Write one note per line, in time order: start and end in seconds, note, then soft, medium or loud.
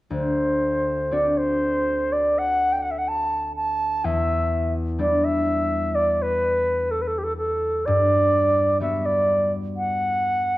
0.10 4.00 D2 soft
0.10 1.14 C5 medium
1.11 4.11 C4 soft
1.11 4.00 D4 soft
1.11 4.00 F#4 soft
1.11 1.29 D5 medium
1.29 1.39 D5 soft
1.37 2.14 C5 medium
2.12 2.40 D5 medium
2.38 2.74 F#5 medium
2.72 2.84 G5 medium
2.82 2.92 F#5 medium
2.91 3.00 E5 medium
2.98 3.10 F#5 medium
3.08 3.55 A5 medium
3.56 4.06 A5 medium
4.04 7.91 E2 soft
4.04 4.73 E5 medium
4.99 7.91 G3 soft
4.99 7.82 D4 soft
4.99 7.82 E4 soft
4.99 5.26 D5 medium
5.24 5.96 E5 medium
5.95 6.23 D5 medium
6.22 6.93 B4 medium
6.91 7.03 A4 medium
7.02 7.09 B4 soft
7.07 7.20 A4 medium
7.18 7.25 G4 soft
7.24 7.37 A4 medium
7.37 7.87 A4 medium
7.86 10.58 G2 medium
7.86 8.81 D5 medium
8.80 10.58 G3 soft
8.80 10.58 B3 soft
8.80 10.58 F#4 soft
8.80 9.07 E5 medium
9.06 9.52 D5 medium
9.77 10.58 F#5 medium